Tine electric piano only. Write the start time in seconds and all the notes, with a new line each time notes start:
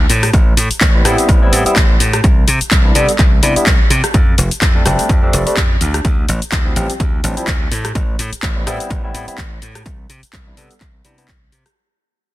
0.94 G3 B3 C4 E4
1.04 G3 B3 C4 E4
1.42 G3 B3 C4 E4
1.66 G3 B3 C4 E4
2.84 G3 B3 D4 E4
2.95 G3 B3 D4 A4
3.43 G3 B3 D4 E4
3.56 G3 B3 D4 E4
4.75 G3 A3 C4 D4
4.85 G3 A3 C4 D4
5.22 G3 A3 C4 D4
5.46 G3 A3 C4 D4
6.65 F3 G3 C4 E4
6.76 F3 G3 C4 G4
7.23 F3 G3 C4 D4
7.37 F3 G3 C4 E4
8.56 G3 B3 C4 E4
8.66 G3 B3 C4 E4
9.04 G3 B3 C4 E4
9.27 G3 B3 C4 E4
10.46 G3 B3 D4 E4
10.57 G3 B3 D4 A4
11.04 G3 B3 D4 E4
11.18 G3 B3 D4 E4